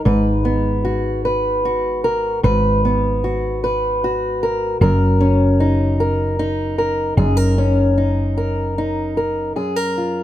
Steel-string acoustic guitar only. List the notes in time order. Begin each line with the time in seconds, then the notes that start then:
Already playing: D#4
0.05 G#2 B4
0.45 B3
0.85 F#4
1.25 B4
1.65 F#4
2.04 A#4
2.43 G#2 B4
2.85 B3
3.24 F#4
3.64 B4
4.04 F#4
4.43 A#4
4.81 F#2 A#4
5.21 C#4
5.60 D#4
6.00 A#4
6.39 D#4
6.78 A#4
7.17 F#2 G#4
7.37 A#4
7.58 C#4
7.98 D#4
8.37 A#4
8.78 D#4
9.17 A#4
9.56 F#2 G#4
9.76 A#4
9.98 F4